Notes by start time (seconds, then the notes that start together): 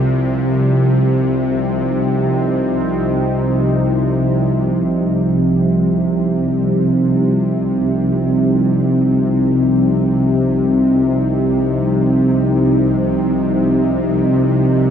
Already playing: C2 C3 F3 G3 C4
0.29 D#4
4.75 C2 C3